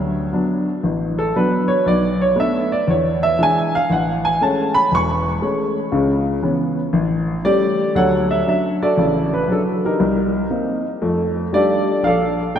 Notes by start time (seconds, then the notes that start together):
Already playing: D2 F#3
0.33 F#3 B3 D4
0.83 A1
1.19 A4
1.36 F#3 B3 D4 B4
1.68 C#5
1.86 B1 D5
2.21 C#5
2.36 A3 B3 D4
2.40 E5
2.72 D5
2.87 E2 C#5
3.23 E5
3.38 E3 G#3 D4
3.43 G#5
3.75 F5
3.90 A1 F#5
4.25 G#5
4.41 G#3 A3 C#4 A5
4.75 B5
4.91 E1 C#6
5.42 G#3 A3 C#4
5.92 C#2 C#3
6.43 E3 B3 C#4
6.93 A1
7.45 G3 A3 C#4 G4 D5
7.95 D2 F#3 A4 C#5 F#5
8.31 E5
8.46 F#3 C#4 D4 E5
8.82 F#4 A4 D5
8.97 A1 C#3
9.34 B4
9.48 F#3 C#4 D4
9.52 A4
9.85 D#4 G4 A#4
10.00 C2
10.50 A#3 C4 D#4
11.02 F2 A3
11.53 G3 A3 D4 D#4 F4 G4 A4 D5
12.03 A#1 A4 D5 F5
12.55 A3 A#3 D4 G5